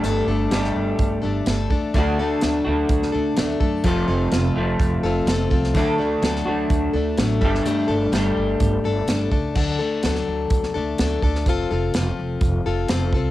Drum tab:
CC |----------------|----------------|----------------|----------------|
HH |x---x---x---x---|x---x---x---x---|x---x---x---x---|x---x---x---x---|
SD |----oo------o---|----o----o--o---|----o-------o--o|----oo------o--o|
BD |--------o-----o-|o-------o-----o-|o-------o-----o-|o-------o-----o-|

CC |----------------|x---------------|----------------|
HH |x---x---x---x---|----x---x---x---|x---x---x---x---|
SD |----o-------o---|----oo---o--o--o|----o-------o---|
BD |--------o-----o-|o-------o-----o-|o-------o-----o-|